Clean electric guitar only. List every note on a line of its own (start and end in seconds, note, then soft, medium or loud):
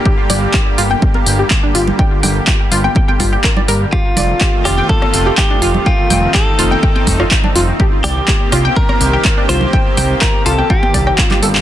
3.93 4.67 F4 medium
4.65 4.88 G4 loud
4.89 5.34 A4 loud
5.38 5.88 G4 loud
5.86 6.31 F4 medium
6.35 7.27 A4 medium
8.04 8.49 G4 loud
8.77 9.45 A#4 loud
9.49 10.21 C5 loud
10.22 10.45 A#4 medium
10.46 10.71 A4 medium
10.70 11.21 G4 medium
11.21 11.39 F4 medium